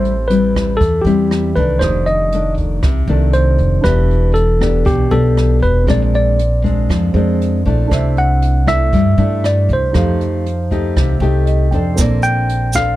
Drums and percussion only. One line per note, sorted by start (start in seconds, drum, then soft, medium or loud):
0.05 closed hi-hat soft
0.30 closed hi-hat soft
0.56 kick soft
0.56 cross-stick medium
0.56 closed hi-hat soft
0.81 kick medium
0.81 closed hi-hat soft
1.06 closed hi-hat soft
1.31 cross-stick soft
1.31 closed hi-hat soft
1.56 kick soft
1.56 closed hi-hat soft
1.81 kick medium
1.81 cross-stick medium
1.81 closed hi-hat soft
2.07 closed hi-hat soft
2.32 closed hi-hat soft
2.58 kick soft
2.58 closed hi-hat soft
2.83 kick medium
2.83 cross-stick medium
2.83 closed hi-hat soft
3.08 closed hi-hat soft
3.33 closed hi-hat soft
3.59 kick soft
3.59 closed hi-hat soft
3.84 kick soft
3.84 cross-stick medium
3.84 closed hi-hat soft
4.11 closed hi-hat soft
4.35 closed hi-hat soft
4.61 kick soft
4.61 cross-stick medium
4.61 closed hi-hat soft
4.86 kick medium
4.86 closed hi-hat soft
5.12 closed hi-hat soft
5.37 cross-stick soft
5.37 closed hi-hat soft
5.63 kick soft
5.63 closed hi-hat soft
5.88 kick medium
5.88 cross-stick medium
5.88 closed hi-hat soft
6.14 closed hi-hat soft
6.39 closed hi-hat soft
6.65 kick soft
6.65 closed hi-hat soft
6.90 kick medium
6.90 cross-stick medium
6.90 closed hi-hat soft
7.16 closed hi-hat soft
7.42 closed hi-hat soft
7.66 kick soft
7.66 closed hi-hat soft
7.91 kick medium
7.91 cross-stick medium
7.91 closed hi-hat soft
8.17 closed hi-hat soft
8.42 closed hi-hat soft
8.67 kick soft
8.67 cross-stick medium
8.67 closed hi-hat soft
8.93 kick medium
8.93 closed hi-hat soft
9.18 closed hi-hat soft
9.44 cross-stick soft
9.44 closed hi-hat soft
9.69 kick soft
9.69 closed hi-hat soft
9.94 kick medium
9.94 cross-stick medium
9.94 closed hi-hat soft
10.21 closed hi-hat soft
10.46 closed hi-hat soft
10.71 kick soft
10.71 closed hi-hat soft
10.97 kick medium
10.97 cross-stick medium
10.97 closed hi-hat soft
11.22 closed hi-hat soft
11.47 closed hi-hat soft
11.73 kick soft
11.73 closed hi-hat soft
11.98 kick medium
11.98 cross-stick soft
11.98 closed hi-hat soft
11.98 shaker medium
12.23 closed hi-hat soft
12.23 shaker soft
12.49 closed hi-hat soft
12.73 kick soft
12.73 cross-stick medium
12.73 closed hi-hat soft
12.73 shaker medium